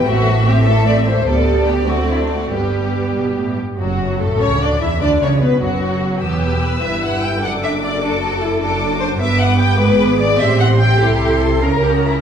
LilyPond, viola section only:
\new Staff \with { instrumentName = "Viola section" } { \time 6/8 \key g \major \tempo 4. = 99 << { c'8 a8 c'8 a8 c'8 a8 | b4. c'4. | b2~ b8 r8 | \key d \major fis4 a8 cis'8 d'8 e'8 |
d'8 cis'8 b8 fis4. | b'2. | a'4. fis'4. | \key a \dorian fis'4. b'4. |
gis'4. g'4. | a'4. ais'4. | } \\ { a8 e8 a8 e8 a8 e8 | g4. a4. | g2~ g8 r8 | r2. |
r2. | b4. e'4. | d'4. d'8 fis'8 e'8 | d'4. b4.~ |
b4. c'4. | e'4. cis'4. | } >> }